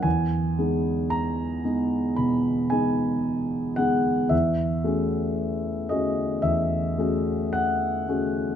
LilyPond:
\new Staff \with { instrumentName = "Grand piano" } { \time 4/4 \key e \major \tempo 4 = 56 << { gis''4 ais''4 b''8 gis''4 fis''8 | e''4. dis''8 e''4 fis''8 r8 | } \\ { e,8 <gis b dis' gis'>4 <gis b dis' gis'>8 b,8 <gis b dis' gis'>4 <gis b dis' gis'>8 | e,8 <a cis' fis' gis'>4 <a cis' fis' gis'>8 e,8 <a cis' fis' gis'>4 <a cis' fis' gis'>8 | } >> }